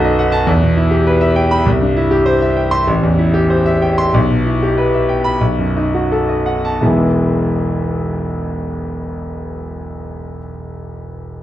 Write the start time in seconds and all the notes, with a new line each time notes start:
Already playing: B1 F#2 D#4 F#4 A4
0.04 D#5
0.19 F#5
0.32 A5
0.47 E2
0.62 B2
0.77 E4
0.91 G4
1.07 B4
1.21 E5
1.36 G5
1.51 B5
1.66 C2
1.81 G2
1.97 E4
2.11 G4
2.26 C5
2.42 E5
2.57 G5
2.71 C6
2.87 A1
3.03 E2
3.18 E4
3.34 G4
3.50 C5
3.66 E5
3.82 G5
3.98 C6
4.14 B1
4.30 B2
4.46 E4
4.63 G4
4.78 B4
4.94 E5
5.09 G5
5.24 B5
5.41 B1
5.58 F#2
5.77 D#4
5.94 F#4
6.12 A4
6.29 D#5
6.46 F#5
6.65 A5
6.81 E1 B1 E3 G#3 B3 E4